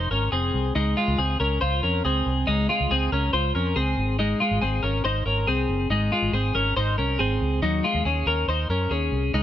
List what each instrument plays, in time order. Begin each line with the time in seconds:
Already playing: clean electric guitar D#4 C5
0.11 fingered electric bass G#1, clean electric guitar C#4 A#4
0.32 fingered electric bass F1, clean electric guitar C4 G#4
0.54 fingered electric bass C2
0.75 fingered electric bass C#2, clean electric guitar G#3 D#4
0.97 clean electric guitar G#3 F4
1.08 fingered electric bass C#2
1.18 fingered electric bass C#2, clean electric guitar C4 G#4
1.40 fingered electric bass C#2, clean electric guitar C#4 A#4
1.61 fingered electric bass C#2, clean electric guitar F4 C5
1.83 fingered electric bass F2, clean electric guitar C#4 A#4
2.05 fingered electric bass C#2, clean electric guitar C4 G#4
2.26 fingered electric bass C2
2.47 fingered electric bass C#2, clean electric guitar G#3 D#4
2.69 clean electric guitar G#3 F4
2.80 fingered electric bass C#2
2.91 fingered electric bass C#2, clean electric guitar C4 G#4
3.12 fingered electric bass C#2, clean electric guitar C#4 A#4
3.33 fingered electric bass C#2, clean electric guitar F4 C5
3.55 fingered electric bass F2, clean electric guitar C#4 A#4
3.76 fingered electric bass C#2, clean electric guitar C4 G#4
3.98 fingered electric bass G#1
4.19 clean electric guitar G#3 D#4
4.40 clean electric guitar G#3 F4
4.51 fingered electric bass G#1
4.61 fingered electric bass G#1, clean electric guitar C4 G#4
4.83 fingered electric bass G#1, clean electric guitar C#4 A#4
5.05 fingered electric bass G#1, clean electric guitar D#4 C5
5.26 fingered electric bass G#1, clean electric guitar C#4 A#4
5.47 fingered electric bass C2, clean electric guitar C4 G#4
5.69 fingered electric bass F#1
5.90 fingered electric bass G#1, clean electric guitar G#3 D#4
6.12 clean electric guitar G#3 F4
6.22 fingered electric bass G#1
6.33 fingered electric bass G#1, clean electric guitar C4 G#4
6.55 fingered electric bass G#1, clean electric guitar C#4 A#4
6.77 fingered electric bass G#1, clean electric guitar D#4 C5
6.98 fingered electric bass C2, clean electric guitar C#4 A#4
7.19 fingered electric bass G#1, clean electric guitar C4 G#4
7.41 fingered electric bass C#2
7.62 fingered electric bass D#2, clean electric guitar F#3 D#4
7.84 clean electric guitar G#3 F4
7.95 fingered electric bass D#2
8.05 fingered electric bass D#2, clean electric guitar C#4 G#4
8.26 fingered electric bass D#2, clean electric guitar C#4 A#4
8.48 fingered electric bass D#2, clean electric guitar D#4 C5
8.70 fingered electric bass F#2, clean electric guitar C#4 A#4
8.91 fingered electric bass D#2, clean electric guitar C#4 G#4
9.12 fingered electric bass C2
9.34 fingered electric bass C#2, clean electric guitar G#3 D#4